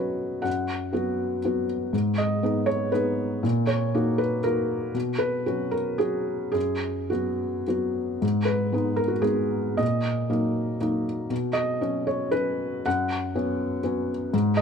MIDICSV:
0, 0, Header, 1, 2, 480
1, 0, Start_track
1, 0, Key_signature, 5, "minor"
1, 0, Tempo, 542495
1, 405, Time_signature, 3, 2, 24, 8
1, 405, Tempo, 491803
1, 2325, Tempo, 505051
1, 5205, Tempo, 552995
1, 7605, Tempo, 528169
1, 9045, Tempo, 501672
1, 10965, Tempo, 522648
1, 11925, Tempo, 488998
1, 13652, End_track
2, 0, Start_track
2, 0, Title_t, "Felt piano"
2, 0, Program_c, 0, 0
2, 0, Control_c, 0, 64, 127
2, 0, Note_on_c, 0, 47, 34
2, 0, Note_on_c, 0, 54, 25
2, 0, Note_on_c, 0, 61, 24
2, 0, Note_on_c, 0, 66, 28
2, 0, Note_on_c, 0, 71, 45
2, 0, Note_on_c, 0, 73, 42
2, 0, Note_on_c, 0, 75, 46
2, 361, Note_off_c, 0, 54, 0
2, 364, Note_off_c, 0, 61, 0
2, 365, Note_off_c, 0, 66, 0
2, 370, Note_on_c, 0, 78, 55
2, 381, Note_on_c, 0, 42, 36
2, 390, Note_off_c, 0, 71, 0
2, 425, Control_c, 0, 64, 0
2, 429, Note_off_c, 0, 73, 0
2, 430, Note_off_c, 0, 47, 0
2, 433, Note_off_c, 0, 75, 0
2, 601, Control_c, 0, 64, 127
2, 861, Note_off_c, 0, 42, 0
2, 862, Note_on_c, 0, 54, 29
2, 867, Note_on_c, 0, 59, 28
2, 878, Note_on_c, 0, 66, 30
2, 1310, Note_off_c, 0, 54, 0
2, 1312, Note_off_c, 0, 59, 0
2, 1317, Note_off_c, 0, 66, 0
2, 1370, Note_on_c, 0, 54, 27
2, 1370, Note_on_c, 0, 59, 26
2, 1381, Note_on_c, 0, 66, 28
2, 1580, Note_off_c, 0, 78, 0
2, 1805, Note_off_c, 0, 54, 0
2, 1805, Note_off_c, 0, 59, 0
2, 1811, Note_off_c, 0, 66, 0
2, 1842, Note_on_c, 0, 44, 38
2, 1856, Control_c, 0, 64, 0
2, 2029, Control_c, 0, 64, 127
2, 2086, Note_on_c, 0, 75, 58
2, 2312, Note_off_c, 0, 44, 0
2, 2329, Note_on_c, 0, 59, 32
2, 2335, Note_on_c, 0, 63, 27
2, 2339, Note_on_c, 0, 68, 33
2, 2550, Note_on_c, 0, 73, 62
2, 2564, Note_off_c, 0, 75, 0
2, 2768, Note_off_c, 0, 59, 0
2, 2771, Note_off_c, 0, 63, 0
2, 2773, Note_off_c, 0, 68, 0
2, 2794, Note_on_c, 0, 71, 55
2, 2797, Note_off_c, 0, 73, 0
2, 2799, Note_on_c, 0, 59, 30
2, 2810, Note_on_c, 0, 63, 33
2, 2815, Note_on_c, 0, 68, 35
2, 3249, Note_off_c, 0, 59, 0
2, 3254, Note_off_c, 0, 63, 0
2, 3256, Note_off_c, 0, 68, 0
2, 3280, Note_on_c, 0, 46, 48
2, 3284, Note_off_c, 0, 71, 0
2, 3304, Control_c, 0, 64, 0
2, 3481, Control_c, 0, 64, 127
2, 3510, Note_on_c, 0, 73, 58
2, 3743, Note_off_c, 0, 46, 0
2, 3768, Note_on_c, 0, 58, 35
2, 3770, Note_on_c, 0, 63, 33
2, 3777, Note_on_c, 0, 66, 34
2, 3988, Note_off_c, 0, 73, 0
2, 3995, Note_on_c, 0, 71, 60
2, 4198, Note_off_c, 0, 58, 0
2, 4199, Note_off_c, 0, 63, 0
2, 4202, Note_off_c, 0, 66, 0
2, 4232, Note_off_c, 0, 71, 0
2, 4237, Note_on_c, 0, 70, 60
2, 4247, Note_on_c, 0, 58, 33
2, 4249, Note_on_c, 0, 63, 32
2, 4261, Note_on_c, 0, 66, 35
2, 4687, Note_off_c, 0, 58, 0
2, 4687, Note_off_c, 0, 63, 0
2, 4693, Note_off_c, 0, 66, 0
2, 4719, Note_off_c, 0, 70, 0
2, 4719, Note_on_c, 0, 47, 41
2, 4736, Control_c, 0, 64, 0
2, 4881, Control_c, 0, 64, 127
2, 4949, Note_on_c, 0, 71, 66
2, 5193, Note_off_c, 0, 47, 0
2, 5211, Note_on_c, 0, 66, 36
2, 5217, Note_on_c, 0, 61, 28
2, 5218, Note_on_c, 0, 54, 31
2, 5429, Note_on_c, 0, 70, 55
2, 5430, Note_off_c, 0, 71, 0
2, 5640, Note_off_c, 0, 66, 0
2, 5643, Note_off_c, 0, 61, 0
2, 5644, Note_off_c, 0, 54, 0
2, 5662, Note_on_c, 0, 68, 59
2, 5669, Note_off_c, 0, 70, 0
2, 5673, Note_on_c, 0, 54, 30
2, 5674, Note_on_c, 0, 61, 29
2, 5676, Note_on_c, 0, 66, 33
2, 6113, Note_off_c, 0, 68, 0
2, 6121, Note_off_c, 0, 54, 0
2, 6121, Note_off_c, 0, 61, 0
2, 6123, Note_off_c, 0, 66, 0
2, 6127, Note_on_c, 0, 68, 60
2, 6138, Note_on_c, 0, 42, 35
2, 6172, Control_c, 0, 64, 0
2, 6313, Control_c, 0, 64, 127
2, 6624, Note_off_c, 0, 42, 0
2, 6631, Note_on_c, 0, 66, 40
2, 6633, Note_off_c, 0, 68, 0
2, 6647, Note_on_c, 0, 59, 24
2, 6648, Note_on_c, 0, 54, 27
2, 7094, Note_off_c, 0, 54, 0
2, 7094, Note_off_c, 0, 59, 0
2, 7121, Note_off_c, 0, 66, 0
2, 7132, Note_on_c, 0, 54, 25
2, 7135, Note_on_c, 0, 59, 25
2, 7145, Note_on_c, 0, 66, 28
2, 7572, Note_off_c, 0, 54, 0
2, 7573, Note_off_c, 0, 59, 0
2, 7579, Note_off_c, 0, 66, 0
2, 7604, Note_on_c, 0, 44, 35
2, 7624, Control_c, 0, 64, 0
2, 7762, Control_c, 0, 64, 127
2, 7816, Note_on_c, 0, 71, 57
2, 8057, Note_off_c, 0, 44, 0
2, 8063, Note_on_c, 0, 56, 27
2, 8071, Note_on_c, 0, 59, 28
2, 8080, Note_on_c, 0, 63, 34
2, 8281, Note_on_c, 0, 70, 55
2, 8293, Note_off_c, 0, 71, 0
2, 8385, Note_on_c, 0, 66, 44
2, 8411, Note_off_c, 0, 70, 0
2, 8496, Note_off_c, 0, 56, 0
2, 8500, Note_off_c, 0, 59, 0
2, 8510, Note_off_c, 0, 63, 0
2, 8510, Note_on_c, 0, 56, 30
2, 8511, Note_on_c, 0, 68, 55
2, 8514, Note_on_c, 0, 59, 27
2, 8524, Note_off_c, 0, 66, 0
2, 8529, Note_on_c, 0, 63, 31
2, 8993, Note_off_c, 0, 56, 0
2, 8995, Note_off_c, 0, 59, 0
2, 9002, Note_off_c, 0, 63, 0
2, 9017, Note_on_c, 0, 75, 65
2, 9023, Note_on_c, 0, 46, 36
2, 9030, Note_off_c, 0, 68, 0
2, 9064, Control_c, 0, 64, 0
2, 9223, Control_c, 0, 64, 127
2, 9505, Note_off_c, 0, 46, 0
2, 9515, Note_on_c, 0, 54, 29
2, 9517, Note_on_c, 0, 58, 29
2, 9524, Note_on_c, 0, 63, 30
2, 9966, Note_off_c, 0, 54, 0
2, 9966, Note_off_c, 0, 58, 0
2, 9970, Note_off_c, 0, 63, 0
2, 10003, Note_on_c, 0, 58, 28
2, 10004, Note_on_c, 0, 54, 31
2, 10011, Note_on_c, 0, 63, 35
2, 10234, Note_off_c, 0, 75, 0
2, 10440, Note_off_c, 0, 58, 0
2, 10441, Note_off_c, 0, 54, 0
2, 10444, Note_off_c, 0, 63, 0
2, 10474, Note_on_c, 0, 47, 40
2, 10498, Control_c, 0, 64, 0
2, 10671, Control_c, 0, 64, 127
2, 10697, Note_on_c, 0, 75, 59
2, 10946, Note_off_c, 0, 47, 0
2, 10967, Note_on_c, 0, 54, 30
2, 10968, Note_on_c, 0, 61, 35
2, 11190, Note_off_c, 0, 75, 0
2, 11201, Note_on_c, 0, 73, 48
2, 11400, Note_off_c, 0, 54, 0
2, 11401, Note_off_c, 0, 61, 0
2, 11427, Note_on_c, 0, 71, 66
2, 11435, Note_on_c, 0, 61, 36
2, 11436, Note_off_c, 0, 73, 0
2, 11438, Note_on_c, 0, 54, 32
2, 11887, Note_off_c, 0, 61, 0
2, 11889, Note_off_c, 0, 54, 0
2, 11920, Note_off_c, 0, 71, 0
2, 11924, Note_on_c, 0, 78, 65
2, 11931, Note_on_c, 0, 42, 49
2, 11944, Control_c, 0, 64, 0
2, 12131, Control_c, 0, 64, 127
2, 12397, Note_off_c, 0, 42, 0
2, 12414, Note_on_c, 0, 54, 32
2, 12414, Note_on_c, 0, 59, 37
2, 12416, Note_on_c, 0, 61, 38
2, 12849, Note_off_c, 0, 54, 0
2, 12849, Note_off_c, 0, 59, 0
2, 12850, Note_off_c, 0, 61, 0
2, 12884, Note_on_c, 0, 54, 34
2, 12886, Note_on_c, 0, 59, 37
2, 12897, Note_on_c, 0, 61, 42
2, 13127, Note_off_c, 0, 78, 0
2, 13328, Note_off_c, 0, 54, 0
2, 13329, Note_off_c, 0, 59, 0
2, 13334, Note_off_c, 0, 61, 0
2, 13376, Note_on_c, 0, 44, 46
2, 13385, Control_c, 0, 64, 0
2, 13563, Control_c, 0, 64, 127
2, 13607, Note_on_c, 0, 75, 73
2, 13652, Note_off_c, 0, 44, 0
2, 13652, Note_off_c, 0, 75, 0
2, 13652, End_track
0, 0, End_of_file